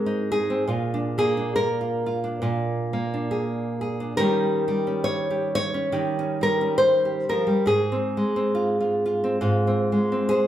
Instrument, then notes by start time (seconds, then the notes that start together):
nylon-string guitar
Already playing: G#2 G#3 C4 A#4
0.06 D#4
0.32 G#4
0.50 C4
0.68 A#2 F4
0.94 D4
1.18 A#3 G#4
1.37 D4
1.56 A#4
1.81 F4
2.06 F4
2.24 D4
2.42 A#2 F4
2.93 A#3
3.14 D4
3.31 G#4
3.81 G#4
4.00 D4
4.17 D#3 G3 C#4 G4 A#4
4.68 G3
4.87 C#4
5.04 C#5
5.30 G4
5.55 C#5
5.74 C#4
5.92 D#3 G4
6.19 C#4
6.41 G3 A#4
6.61 C#4
6.78 C5
7.05 G4
7.29 F3 A#4
7.47 G3
7.66 G#2 G#4
7.92 C4
8.17 G#3
8.36 C4
8.55 F4
8.81 F4
9.06 F4
9.24 C4
9.41 G#2 F4
9.67 C4
9.92 G#3
10.12 C4
10.29 G#4 C5